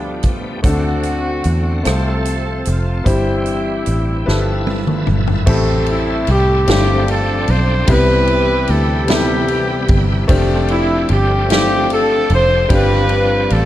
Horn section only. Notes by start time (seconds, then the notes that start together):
Already playing: F3 G3 D4
0.65 A3 C4 F#4
1.87 C4 F4 A4
2.68 F4
3.07 G3 C4 E4
5.90 E4
6.31 G4
6.71 C4 D4 G4
7.12 A4
7.50 C5
7.91 E4 G4 B4
8.71 A4
9.10 B3 E4 G4
10.71 E4
11.12 G4
11.52 G4
11.93 A4
12.34 C5
12.73 D4 F4 B4
13.53 A4